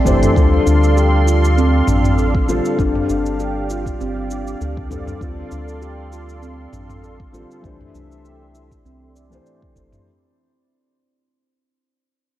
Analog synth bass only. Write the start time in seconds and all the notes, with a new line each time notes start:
0.06 G1
0.36 D2
0.67 D2
1.88 A1
2.48 A1
2.78 G1
3.09 G1
4.00 G1
4.61 D2
5.21 D2
5.52 D2
6.73 A1
7.33 A1
7.64 C2
7.94 C2
8.85 C2
9.76 G1